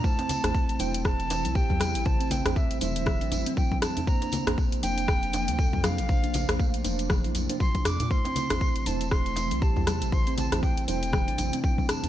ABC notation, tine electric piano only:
X:1
M:4/4
L:1/16
Q:"Swing 16ths" 1/4=119
K:Aphr
V:1 name="Tine electric piano"
[A,Ec]3 [A,Ec]3 [A,Ec]8- [A,Ec]2 | [A,Ec]3 [A,Ec]3 [A,Ec]8- [A,Ec]2 | [B,Dc]3 [B,Dc]3 [B,Dc]8- [B,Dc]2 | [B,Dc]3 [B,Dc]3 [B,Dc]4- [B,Dc] [B,Dc] z4 |
[A,Ec]3 [A,Ec]3 [A,Ec]8- [A,Ec]2 | [A,Ec]3 [A,Ec]3 [A,Ec]8- [A,Ec]2 |]